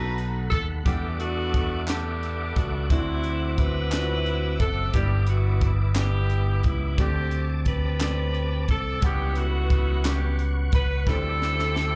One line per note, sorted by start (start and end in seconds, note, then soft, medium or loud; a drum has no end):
0.00 0.47 B1 medium
0.00 0.82 B2 medium
0.00 0.75 B3 medium
0.00 0.48 D#4 medium
0.00 0.76 D#4 medium
0.00 0.48 F#4 medium
0.00 0.76 F#4 medium
0.00 0.80 A4 medium
0.00 0.84 A4 medium
0.00 0.24 B4 loud
0.00 4.90 F#5 medium
0.00 0.83 B5 medium
0.18 closed hi-hat soft
0.50 0.83 D#2 medium
0.50 0.66 A4 medium
0.50 kick medium
0.50 closed hi-hat medium
0.85 2.52 E2 medium
0.85 1.84 E3 medium
0.85 1.79 G3 medium
0.85 1.78 A3 medium
0.85 1.84 B3 medium
0.85 1.78 D4 medium
0.85 1.19 D4 medium
0.85 1.17 G4 medium
0.85 2.88 A4 medium
0.85 2.88 E5 medium
0.85 1.79 F#5 medium
0.85 2.88 D6 medium
0.85 kick loud
0.85 closed hi-hat medium
1.20 2.18 A3 medium
1.20 1.89 D4 medium
1.20 1.84 F#4 loud
1.20 closed hi-hat medium
1.54 kick medium
1.54 closed hi-hat soft
1.87 2.80 A3 medium
1.87 2.87 B3 medium
1.87 2.80 D4 medium
1.87 2.87 D4 medium
1.87 2.57 G4 medium
1.87 2.81 A4 medium
1.87 2.81 F#5 medium
1.87 snare loud
1.87 clap medium
1.87 closed hi-hat loud
2.23 closed hi-hat soft
2.56 2.88 C#2 medium
2.56 2.90 F#4 medium
2.56 kick medium
2.56 closed hi-hat medium
2.89 4.56 D2 medium
2.89 3.89 D3 medium
2.89 3.89 A3 medium
2.89 3.82 C4 medium
2.89 3.89 C4 medium
2.89 4.93 C4 medium
2.89 3.83 D4 medium
2.89 3.57 E4 medium
2.89 3.83 E4 medium
2.89 3.83 F#4 medium
2.89 6.95 E5 medium
2.89 9.00 D6 medium
2.89 kick loud
2.89 closed hi-hat medium
3.24 closed hi-hat medium
3.57 4.56 E4 medium
3.57 4.56 F#4 medium
3.57 4.60 B4 loud
3.57 kick medium
3.57 closed hi-hat soft
3.91 4.84 C4 medium
3.91 4.84 D4 medium
3.91 4.85 E4 medium
3.91 3.99 F4 medium
3.91 snare loud
3.91 clap medium
3.91 closed hi-hat loud
3.99 4.88 F#4 medium
4.26 closed hi-hat soft
4.60 4.91 F#1 medium
4.60 4.94 A4 medium
4.60 kick medium
4.60 closed hi-hat medium
4.93 6.60 G1 medium
4.93 5.93 G2 medium
4.93 5.88 G3 medium
4.93 5.86 B3 medium
4.93 5.92 B3 medium
4.93 5.87 D4 medium
4.93 5.93 E4 medium
4.93 5.87 E4 medium
4.93 5.26 G4 medium
4.93 6.97 B4 medium
4.93 kick loud
4.93 closed hi-hat medium
5.27 5.70 F#4 medium
5.27 closed hi-hat medium
5.61 kick medium
5.61 closed hi-hat medium
5.94 6.88 B3 medium
5.94 6.95 B3 medium
5.94 6.88 D4 medium
5.94 6.89 E4 medium
5.94 6.89 G4 medium
5.94 snare loud
5.94 clap loud
5.94 closed hi-hat loud
5.98 6.65 E4 medium
5.98 6.61 G4 medium
6.30 closed hi-hat soft
6.63 6.96 C#2 medium
6.63 6.99 E4 medium
6.63 kick medium
6.63 closed hi-hat medium
6.97 8.65 D2 medium
6.97 7.97 D3 medium
6.97 7.90 A3 medium
6.97 9.00 C4 medium
6.97 7.91 C4 medium
6.97 7.97 C4 medium
6.97 7.91 D4 medium
6.97 7.91 G4 medium
6.97 7.51 G4 medium
6.97 9.00 A5 medium
6.97 kick loud
6.97 closed hi-hat medium
7.31 closed hi-hat medium
7.65 8.66 G4 medium
7.65 8.70 B4 loud
7.65 kick medium
7.65 closed hi-hat medium
8.00 8.92 A3 medium
8.00 8.92 C4 medium
8.00 8.93 D4 medium
8.00 8.94 G4 medium
8.00 snare loud
8.00 clap loud
8.00 closed hi-hat loud
8.35 closed hi-hat soft
8.68 9.00 C2 medium
8.68 9.01 A4 medium
8.68 kick medium
8.68 closed hi-hat soft
9.01 10.69 C#2 medium
9.01 10.01 C#3 medium
9.01 9.94 G3 medium
9.01 9.95 B3 medium
9.01 9.37 B3 medium
9.01 9.95 C#4 medium
9.01 10.02 E4 medium
9.01 11.05 B4 medium
9.01 11.05 F#5 medium
9.01 9.95 F#5 medium
9.01 11.04 C#6 medium
9.01 kick loud
9.01 closed hi-hat medium
9.06 9.38 G4 loud
9.35 10.35 A3 medium
9.35 10.35 B3 medium
9.35 10.06 F#4 loud
9.35 closed hi-hat medium
9.70 kick loud
9.70 closed hi-hat medium
10.04 10.96 G3 medium
10.04 10.97 B3 medium
10.04 10.97 C#4 medium
10.04 10.12 F#4 medium
10.04 10.46 G4 medium
10.04 snare loud
10.04 clap medium
10.04 closed hi-hat loud
10.12 11.01 G4 medium
10.39 closed hi-hat soft
10.72 11.04 C#2 medium
10.72 11.05 B4 loud
10.72 kick loud
10.72 closed hi-hat medium
11.06 11.96 D2 loud
11.06 11.96 D3 medium
11.06 11.96 G3 medium
11.06 11.96 C4 medium
11.06 11.96 D4 medium
11.06 11.96 E4 medium
11.06 11.96 G4 medium
11.06 11.96 A4 loud
11.06 11.96 C5 medium
11.06 11.96 E5 medium
11.06 11.96 D6 medium
11.06 kick loud
11.06 snare soft
11.42 snare medium
11.59 snare medium
11.76 snare medium